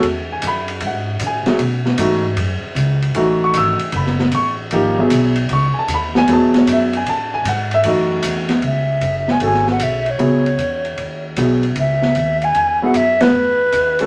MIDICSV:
0, 0, Header, 1, 6, 480
1, 0, Start_track
1, 0, Key_signature, 4, "minor"
1, 0, Tempo, 391389
1, 1007, Time_signature, 4, 2, 24, 8
1, 17247, End_track
2, 0, Start_track
2, 0, Title_t, "Flute"
2, 0, Program_c, 0, 73
2, 10623, Note_on_c, 0, 76, 86
2, 11421, Note_on_c, 0, 80, 81
2, 11440, Note_off_c, 0, 76, 0
2, 11563, Note_off_c, 0, 80, 0
2, 11585, Note_on_c, 0, 80, 87
2, 11866, Note_off_c, 0, 80, 0
2, 11916, Note_on_c, 0, 78, 74
2, 12055, Note_on_c, 0, 76, 81
2, 12073, Note_off_c, 0, 78, 0
2, 12385, Note_on_c, 0, 73, 85
2, 12403, Note_off_c, 0, 76, 0
2, 13814, Note_off_c, 0, 73, 0
2, 14466, Note_on_c, 0, 76, 98
2, 15261, Note_on_c, 0, 80, 92
2, 15279, Note_off_c, 0, 76, 0
2, 15735, Note_off_c, 0, 80, 0
2, 15749, Note_on_c, 0, 78, 84
2, 15900, Note_on_c, 0, 76, 94
2, 15918, Note_off_c, 0, 78, 0
2, 16202, Note_on_c, 0, 71, 93
2, 16221, Note_off_c, 0, 76, 0
2, 17247, Note_off_c, 0, 71, 0
2, 17247, End_track
3, 0, Start_track
3, 0, Title_t, "Grand piano"
3, 0, Program_c, 1, 0
3, 397, Note_on_c, 1, 80, 82
3, 538, Note_off_c, 1, 80, 0
3, 581, Note_on_c, 1, 83, 106
3, 1001, Note_off_c, 1, 83, 0
3, 1064, Note_on_c, 1, 78, 80
3, 1482, Note_off_c, 1, 78, 0
3, 1552, Note_on_c, 1, 80, 89
3, 1797, Note_on_c, 1, 54, 71
3, 1806, Note_on_c, 1, 59, 61
3, 1809, Note_on_c, 1, 64, 66
3, 1817, Note_on_c, 1, 68, 77
3, 1831, Note_off_c, 1, 80, 0
3, 1944, Note_off_c, 1, 54, 0
3, 1948, Note_off_c, 1, 59, 0
3, 1949, Note_off_c, 1, 64, 0
3, 1953, Note_off_c, 1, 68, 0
3, 2436, Note_on_c, 1, 52, 63
3, 2440, Note_on_c, 1, 57, 64
3, 2447, Note_on_c, 1, 63, 65
3, 2453, Note_on_c, 1, 66, 72
3, 2727, Note_off_c, 1, 52, 0
3, 2729, Note_off_c, 1, 57, 0
3, 2733, Note_off_c, 1, 63, 0
3, 2735, Note_off_c, 1, 66, 0
3, 3863, Note_on_c, 1, 52, 75
3, 3869, Note_on_c, 1, 57, 63
3, 3876, Note_on_c, 1, 63, 65
3, 3883, Note_on_c, 1, 66, 75
3, 4220, Note_on_c, 1, 85, 106
3, 4361, Note_off_c, 1, 85, 0
3, 4384, Note_on_c, 1, 88, 110
3, 4604, Note_off_c, 1, 52, 0
3, 4607, Note_off_c, 1, 57, 0
3, 4610, Note_off_c, 1, 63, 0
3, 4614, Note_off_c, 1, 66, 0
3, 4815, Note_off_c, 1, 88, 0
3, 4861, Note_on_c, 1, 83, 81
3, 5293, Note_off_c, 1, 83, 0
3, 5333, Note_on_c, 1, 85, 96
3, 5518, Note_off_c, 1, 85, 0
3, 5791, Note_on_c, 1, 53, 71
3, 5792, Note_on_c, 1, 58, 69
3, 5802, Note_on_c, 1, 63, 65
3, 5807, Note_on_c, 1, 67, 85
3, 6079, Note_off_c, 1, 53, 0
3, 6079, Note_off_c, 1, 58, 0
3, 6084, Note_off_c, 1, 63, 0
3, 6087, Note_off_c, 1, 67, 0
3, 6110, Note_on_c, 1, 54, 71
3, 6117, Note_on_c, 1, 59, 65
3, 6125, Note_on_c, 1, 64, 69
3, 6132, Note_on_c, 1, 68, 86
3, 6524, Note_off_c, 1, 54, 0
3, 6528, Note_off_c, 1, 59, 0
3, 6532, Note_off_c, 1, 64, 0
3, 6535, Note_off_c, 1, 68, 0
3, 6782, Note_on_c, 1, 85, 96
3, 7037, Note_on_c, 1, 80, 70
3, 7058, Note_off_c, 1, 80, 0
3, 7075, Note_off_c, 1, 85, 0
3, 7099, Note_on_c, 1, 81, 100
3, 7237, Note_off_c, 1, 81, 0
3, 7286, Note_on_c, 1, 83, 109
3, 7568, Note_off_c, 1, 83, 0
3, 7578, Note_on_c, 1, 80, 120
3, 7707, Note_on_c, 1, 54, 77
3, 7708, Note_on_c, 1, 59, 72
3, 7716, Note_off_c, 1, 80, 0
3, 7720, Note_on_c, 1, 64, 71
3, 7724, Note_on_c, 1, 68, 84
3, 7759, Note_on_c, 1, 81, 101
3, 8044, Note_off_c, 1, 81, 0
3, 8072, Note_on_c, 1, 73, 71
3, 8203, Note_off_c, 1, 73, 0
3, 8247, Note_on_c, 1, 76, 91
3, 8441, Note_off_c, 1, 54, 0
3, 8442, Note_off_c, 1, 59, 0
3, 8448, Note_off_c, 1, 64, 0
3, 8450, Note_off_c, 1, 68, 0
3, 8527, Note_off_c, 1, 76, 0
3, 8547, Note_on_c, 1, 80, 88
3, 8679, Note_off_c, 1, 80, 0
3, 8700, Note_on_c, 1, 81, 102
3, 8993, Note_off_c, 1, 81, 0
3, 9002, Note_on_c, 1, 80, 98
3, 9147, Note_off_c, 1, 80, 0
3, 9183, Note_on_c, 1, 78, 92
3, 9475, Note_off_c, 1, 78, 0
3, 9494, Note_on_c, 1, 76, 104
3, 9621, Note_on_c, 1, 52, 59
3, 9623, Note_on_c, 1, 57, 60
3, 9631, Note_on_c, 1, 63, 54
3, 9633, Note_off_c, 1, 76, 0
3, 9638, Note_on_c, 1, 66, 68
3, 9665, Note_on_c, 1, 75, 80
3, 10359, Note_off_c, 1, 52, 0
3, 10360, Note_off_c, 1, 57, 0
3, 10364, Note_off_c, 1, 63, 0
3, 10368, Note_off_c, 1, 66, 0
3, 10476, Note_off_c, 1, 75, 0
3, 11542, Note_on_c, 1, 68, 56
3, 11551, Note_on_c, 1, 61, 50
3, 11557, Note_on_c, 1, 66, 49
3, 11561, Note_on_c, 1, 69, 62
3, 12284, Note_off_c, 1, 68, 0
3, 12288, Note_off_c, 1, 61, 0
3, 12291, Note_off_c, 1, 66, 0
3, 12293, Note_off_c, 1, 69, 0
3, 12490, Note_on_c, 1, 54, 63
3, 12495, Note_on_c, 1, 59, 63
3, 12505, Note_on_c, 1, 64, 61
3, 12510, Note_on_c, 1, 68, 75
3, 12790, Note_off_c, 1, 54, 0
3, 12793, Note_off_c, 1, 59, 0
3, 12798, Note_off_c, 1, 64, 0
3, 12800, Note_off_c, 1, 68, 0
3, 13946, Note_on_c, 1, 54, 60
3, 13953, Note_on_c, 1, 59, 55
3, 13956, Note_on_c, 1, 64, 52
3, 13965, Note_on_c, 1, 68, 64
3, 14242, Note_off_c, 1, 54, 0
3, 14245, Note_off_c, 1, 59, 0
3, 14247, Note_off_c, 1, 64, 0
3, 14252, Note_off_c, 1, 68, 0
3, 15724, Note_on_c, 1, 54, 71
3, 15729, Note_on_c, 1, 59, 62
3, 15739, Note_on_c, 1, 64, 73
3, 15742, Note_on_c, 1, 68, 86
3, 15869, Note_off_c, 1, 54, 0
3, 15871, Note_off_c, 1, 59, 0
3, 15876, Note_off_c, 1, 64, 0
3, 15878, Note_off_c, 1, 68, 0
3, 17170, Note_on_c, 1, 56, 65
3, 17182, Note_on_c, 1, 61, 65
3, 17184, Note_on_c, 1, 66, 54
3, 17193, Note_on_c, 1, 69, 77
3, 17247, Note_off_c, 1, 56, 0
3, 17247, Note_off_c, 1, 61, 0
3, 17247, Note_off_c, 1, 66, 0
3, 17247, Note_off_c, 1, 69, 0
3, 17247, End_track
4, 0, Start_track
4, 0, Title_t, "Upright bass"
4, 0, Program_c, 2, 32
4, 38, Note_on_c, 2, 40, 90
4, 508, Note_off_c, 2, 40, 0
4, 520, Note_on_c, 2, 42, 87
4, 988, Note_off_c, 2, 42, 0
4, 1001, Note_on_c, 2, 44, 84
4, 1468, Note_off_c, 2, 44, 0
4, 1473, Note_on_c, 2, 45, 102
4, 1777, Note_off_c, 2, 45, 0
4, 1947, Note_on_c, 2, 47, 86
4, 2419, Note_off_c, 2, 47, 0
4, 2429, Note_on_c, 2, 44, 91
4, 2894, Note_off_c, 2, 44, 0
4, 2901, Note_on_c, 2, 42, 92
4, 3208, Note_off_c, 2, 42, 0
4, 3373, Note_on_c, 2, 37, 100
4, 3849, Note_off_c, 2, 37, 0
4, 3857, Note_on_c, 2, 33, 85
4, 4328, Note_off_c, 2, 33, 0
4, 4335, Note_on_c, 2, 32, 85
4, 4642, Note_off_c, 2, 32, 0
4, 4815, Note_on_c, 2, 30, 100
4, 5283, Note_off_c, 2, 30, 0
4, 5291, Note_on_c, 2, 33, 101
4, 5765, Note_off_c, 2, 33, 0
4, 5780, Note_on_c, 2, 32, 81
4, 6249, Note_off_c, 2, 32, 0
4, 6262, Note_on_c, 2, 35, 94
4, 6729, Note_off_c, 2, 35, 0
4, 6740, Note_on_c, 2, 37, 91
4, 7041, Note_off_c, 2, 37, 0
4, 7211, Note_on_c, 2, 39, 97
4, 7682, Note_off_c, 2, 39, 0
4, 7693, Note_on_c, 2, 40, 91
4, 8163, Note_off_c, 2, 40, 0
4, 8177, Note_on_c, 2, 42, 91
4, 8640, Note_off_c, 2, 42, 0
4, 8648, Note_on_c, 2, 45, 89
4, 9120, Note_off_c, 2, 45, 0
4, 9131, Note_on_c, 2, 44, 97
4, 9602, Note_off_c, 2, 44, 0
4, 9611, Note_on_c, 2, 42, 85
4, 10082, Note_off_c, 2, 42, 0
4, 10100, Note_on_c, 2, 40, 90
4, 10567, Note_off_c, 2, 40, 0
4, 10577, Note_on_c, 2, 37, 86
4, 11039, Note_off_c, 2, 37, 0
4, 11047, Note_on_c, 2, 30, 77
4, 11522, Note_off_c, 2, 30, 0
4, 11535, Note_on_c, 2, 32, 75
4, 12002, Note_off_c, 2, 32, 0
4, 12010, Note_on_c, 2, 35, 82
4, 12486, Note_off_c, 2, 35, 0
4, 12492, Note_on_c, 2, 37, 81
4, 12964, Note_off_c, 2, 37, 0
4, 12971, Note_on_c, 2, 40, 85
4, 13449, Note_off_c, 2, 40, 0
4, 13459, Note_on_c, 2, 39, 73
4, 13934, Note_off_c, 2, 39, 0
4, 13940, Note_on_c, 2, 35, 88
4, 14411, Note_off_c, 2, 35, 0
4, 14419, Note_on_c, 2, 37, 88
4, 14896, Note_off_c, 2, 37, 0
4, 14907, Note_on_c, 2, 39, 89
4, 15382, Note_off_c, 2, 39, 0
4, 15393, Note_on_c, 2, 40, 82
4, 15858, Note_off_c, 2, 40, 0
4, 15866, Note_on_c, 2, 42, 80
4, 16340, Note_off_c, 2, 42, 0
4, 16348, Note_on_c, 2, 40, 77
4, 16826, Note_off_c, 2, 40, 0
4, 16837, Note_on_c, 2, 39, 79
4, 17247, Note_off_c, 2, 39, 0
4, 17247, End_track
5, 0, Start_track
5, 0, Title_t, "Muted upright bass strokes"
5, 1794, Note_on_c, 9, 29, 42
5, 1916, Note_off_c, 9, 29, 0
5, 3227, Note_on_c, 9, 29, 43
5, 3349, Note_off_c, 9, 29, 0
5, 4658, Note_on_c, 9, 29, 38
5, 4781, Note_off_c, 9, 29, 0
5, 7064, Note_on_c, 9, 29, 41
5, 7186, Note_off_c, 9, 29, 0
5, 17247, End_track
6, 0, Start_track
6, 0, Title_t, "Drums"
6, 33, Note_on_c, 9, 51, 70
6, 156, Note_off_c, 9, 51, 0
6, 512, Note_on_c, 9, 44, 69
6, 512, Note_on_c, 9, 51, 79
6, 635, Note_off_c, 9, 44, 0
6, 635, Note_off_c, 9, 51, 0
6, 832, Note_on_c, 9, 51, 54
6, 955, Note_off_c, 9, 51, 0
6, 986, Note_on_c, 9, 51, 73
6, 1108, Note_off_c, 9, 51, 0
6, 1465, Note_on_c, 9, 44, 60
6, 1465, Note_on_c, 9, 51, 74
6, 1587, Note_off_c, 9, 44, 0
6, 1587, Note_off_c, 9, 51, 0
6, 1789, Note_on_c, 9, 51, 50
6, 1795, Note_on_c, 9, 38, 50
6, 1911, Note_off_c, 9, 51, 0
6, 1917, Note_off_c, 9, 38, 0
6, 1949, Note_on_c, 9, 51, 70
6, 2071, Note_off_c, 9, 51, 0
6, 2276, Note_on_c, 9, 38, 46
6, 2399, Note_off_c, 9, 38, 0
6, 2424, Note_on_c, 9, 44, 64
6, 2424, Note_on_c, 9, 51, 92
6, 2546, Note_off_c, 9, 44, 0
6, 2546, Note_off_c, 9, 51, 0
6, 2902, Note_on_c, 9, 51, 67
6, 3025, Note_off_c, 9, 51, 0
6, 3386, Note_on_c, 9, 44, 61
6, 3386, Note_on_c, 9, 51, 67
6, 3508, Note_off_c, 9, 44, 0
6, 3508, Note_off_c, 9, 51, 0
6, 3707, Note_on_c, 9, 51, 50
6, 3830, Note_off_c, 9, 51, 0
6, 3856, Note_on_c, 9, 51, 70
6, 3979, Note_off_c, 9, 51, 0
6, 4336, Note_on_c, 9, 44, 62
6, 4336, Note_on_c, 9, 51, 82
6, 4458, Note_off_c, 9, 44, 0
6, 4458, Note_off_c, 9, 51, 0
6, 4652, Note_on_c, 9, 51, 58
6, 4775, Note_off_c, 9, 51, 0
6, 4809, Note_on_c, 9, 51, 70
6, 4932, Note_off_c, 9, 51, 0
6, 4984, Note_on_c, 9, 38, 32
6, 5106, Note_off_c, 9, 38, 0
6, 5141, Note_on_c, 9, 38, 47
6, 5264, Note_off_c, 9, 38, 0
6, 5291, Note_on_c, 9, 44, 51
6, 5291, Note_on_c, 9, 51, 69
6, 5414, Note_off_c, 9, 44, 0
6, 5414, Note_off_c, 9, 51, 0
6, 5772, Note_on_c, 9, 51, 69
6, 5894, Note_off_c, 9, 51, 0
6, 6256, Note_on_c, 9, 44, 62
6, 6256, Note_on_c, 9, 51, 87
6, 6378, Note_off_c, 9, 44, 0
6, 6378, Note_off_c, 9, 51, 0
6, 6568, Note_on_c, 9, 51, 59
6, 6690, Note_off_c, 9, 51, 0
6, 6731, Note_on_c, 9, 51, 70
6, 6854, Note_off_c, 9, 51, 0
6, 7213, Note_on_c, 9, 44, 63
6, 7213, Note_on_c, 9, 51, 72
6, 7336, Note_off_c, 9, 44, 0
6, 7336, Note_off_c, 9, 51, 0
6, 7545, Note_on_c, 9, 38, 72
6, 7668, Note_off_c, 9, 38, 0
6, 7697, Note_on_c, 9, 51, 73
6, 7819, Note_off_c, 9, 51, 0
6, 8021, Note_on_c, 9, 51, 53
6, 8027, Note_on_c, 9, 38, 51
6, 8144, Note_off_c, 9, 51, 0
6, 8150, Note_off_c, 9, 38, 0
6, 8182, Note_on_c, 9, 44, 64
6, 8182, Note_on_c, 9, 51, 89
6, 8304, Note_off_c, 9, 44, 0
6, 8304, Note_off_c, 9, 51, 0
6, 8501, Note_on_c, 9, 51, 53
6, 8623, Note_off_c, 9, 51, 0
6, 8663, Note_on_c, 9, 51, 71
6, 8786, Note_off_c, 9, 51, 0
6, 9140, Note_on_c, 9, 44, 60
6, 9140, Note_on_c, 9, 51, 79
6, 9262, Note_off_c, 9, 44, 0
6, 9262, Note_off_c, 9, 51, 0
6, 9457, Note_on_c, 9, 51, 54
6, 9579, Note_off_c, 9, 51, 0
6, 9608, Note_on_c, 9, 51, 77
6, 9731, Note_off_c, 9, 51, 0
6, 10087, Note_on_c, 9, 44, 78
6, 10087, Note_on_c, 9, 51, 99
6, 10210, Note_off_c, 9, 44, 0
6, 10210, Note_off_c, 9, 51, 0
6, 10407, Note_on_c, 9, 51, 53
6, 10413, Note_on_c, 9, 38, 47
6, 10530, Note_off_c, 9, 51, 0
6, 10536, Note_off_c, 9, 38, 0
6, 10572, Note_on_c, 9, 51, 56
6, 10695, Note_off_c, 9, 51, 0
6, 11053, Note_on_c, 9, 44, 45
6, 11053, Note_on_c, 9, 51, 56
6, 11175, Note_off_c, 9, 44, 0
6, 11175, Note_off_c, 9, 51, 0
6, 11381, Note_on_c, 9, 38, 43
6, 11504, Note_off_c, 9, 38, 0
6, 11528, Note_on_c, 9, 51, 61
6, 11651, Note_off_c, 9, 51, 0
6, 11700, Note_on_c, 9, 38, 29
6, 11823, Note_off_c, 9, 38, 0
6, 11860, Note_on_c, 9, 38, 41
6, 11983, Note_off_c, 9, 38, 0
6, 12013, Note_on_c, 9, 44, 58
6, 12013, Note_on_c, 9, 51, 79
6, 12135, Note_off_c, 9, 44, 0
6, 12135, Note_off_c, 9, 51, 0
6, 12337, Note_on_c, 9, 51, 44
6, 12460, Note_off_c, 9, 51, 0
6, 12497, Note_on_c, 9, 51, 52
6, 12620, Note_off_c, 9, 51, 0
6, 12828, Note_on_c, 9, 51, 43
6, 12951, Note_off_c, 9, 51, 0
6, 12982, Note_on_c, 9, 44, 49
6, 12982, Note_on_c, 9, 51, 58
6, 13104, Note_off_c, 9, 44, 0
6, 13104, Note_off_c, 9, 51, 0
6, 13302, Note_on_c, 9, 51, 39
6, 13424, Note_off_c, 9, 51, 0
6, 13460, Note_on_c, 9, 51, 54
6, 13582, Note_off_c, 9, 51, 0
6, 13937, Note_on_c, 9, 44, 57
6, 13937, Note_on_c, 9, 51, 75
6, 14060, Note_off_c, 9, 44, 0
6, 14060, Note_off_c, 9, 51, 0
6, 14262, Note_on_c, 9, 51, 46
6, 14385, Note_off_c, 9, 51, 0
6, 14417, Note_on_c, 9, 51, 64
6, 14539, Note_off_c, 9, 51, 0
6, 14746, Note_on_c, 9, 38, 40
6, 14869, Note_off_c, 9, 38, 0
6, 14899, Note_on_c, 9, 44, 47
6, 14899, Note_on_c, 9, 51, 55
6, 15021, Note_off_c, 9, 44, 0
6, 15021, Note_off_c, 9, 51, 0
6, 15226, Note_on_c, 9, 51, 44
6, 15349, Note_off_c, 9, 51, 0
6, 15385, Note_on_c, 9, 51, 59
6, 15508, Note_off_c, 9, 51, 0
6, 15869, Note_on_c, 9, 44, 56
6, 15869, Note_on_c, 9, 51, 72
6, 15992, Note_off_c, 9, 44, 0
6, 15992, Note_off_c, 9, 51, 0
6, 16194, Note_on_c, 9, 51, 71
6, 16200, Note_on_c, 9, 38, 80
6, 16317, Note_off_c, 9, 51, 0
6, 16323, Note_off_c, 9, 38, 0
6, 16831, Note_on_c, 9, 44, 60
6, 16831, Note_on_c, 9, 51, 63
6, 16953, Note_off_c, 9, 44, 0
6, 16953, Note_off_c, 9, 51, 0
6, 17155, Note_on_c, 9, 51, 62
6, 17247, Note_off_c, 9, 51, 0
6, 17247, End_track
0, 0, End_of_file